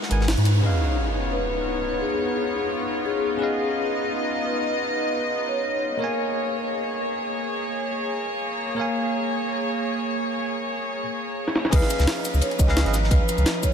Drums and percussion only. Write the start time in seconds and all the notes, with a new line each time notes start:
0.02 snare
0.11 closed hi-hat, ride
0.21 snare
0.28 snare, closed hi-hat, open hi-hat
0.38 closed hi-hat
0.45 closed hi-hat, ride
0.63 crash, shaker
5.75 shaker
6.18 shaker
6.52 shaker
6.87 shaker
7.14 shaker
7.22 shaker
7.57 shaker
7.91 shaker
8.26 shaker
8.53 shaker
8.61 shaker
8.95 shaker
9.30 shaker
9.65 shaker
9.91 shaker
9.99 shaker
10.09 shaker
10.34 shaker
10.69 shaker
11.48 snare
11.56 snare
11.65 snare
11.72 kick, closed hi-hat, ride, crash
11.82 snare
11.90 closed hi-hat, ride, shaker
11.99 snare, closed hi-hat, shaker
12.07 snare, closed hi-hat, open hi-hat
12.25 closed hi-hat, ride, shaker
12.34 shaker
12.41 closed hi-hat, ride
12.51 closed hi-hat
12.59 kick, closed hi-hat, ride, shaker
12.68 snare
12.77 snare, closed hi-hat, ride
12.86 snare, closed hi-hat
12.93 snare, closed hi-hat, ride, shaker
13.03 snare
13.11 kick, closed hi-hat, ride
13.29 closed hi-hat, ride, shaker
13.38 closed hi-hat, shaker
13.46 snare, closed hi-hat, ride
13.63 kick, closed hi-hat, ride, shaker